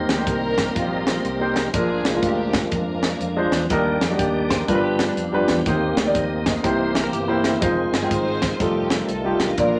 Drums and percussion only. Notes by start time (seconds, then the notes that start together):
0.09 snare, closed hi-hat
0.27 kick, closed hi-hat
0.58 kick, snare, closed hi-hat
0.76 kick, closed hi-hat
1.07 snare, closed hi-hat
1.25 closed hi-hat
1.56 snare, closed hi-hat
1.74 kick, closed hi-hat
2.05 snare, closed hi-hat
2.23 kick, closed hi-hat
2.53 kick, snare, closed hi-hat
2.72 kick, closed hi-hat
3.03 snare, closed hi-hat
3.21 closed hi-hat
3.52 snare, closed hi-hat
3.70 kick, closed hi-hat
4.01 snare, closed hi-hat
4.19 kick, closed hi-hat
4.51 kick, snare, closed hi-hat
4.68 kick, closed hi-hat
4.99 snare, closed hi-hat
5.17 closed hi-hat
5.48 snare, closed hi-hat
5.66 kick, closed hi-hat
5.97 snare, closed hi-hat
6.15 kick, closed hi-hat
6.46 kick, snare, closed hi-hat
6.64 kick, closed hi-hat
6.95 snare, closed hi-hat
7.13 closed hi-hat
7.44 snare, closed hi-hat
7.62 kick, closed hi-hat
7.94 snare, closed hi-hat
8.11 kick, closed hi-hat
8.42 kick, snare, closed hi-hat
8.60 kick, closed hi-hat
8.90 snare, closed hi-hat
9.09 closed hi-hat
9.40 snare, closed hi-hat
9.58 kick, closed hi-hat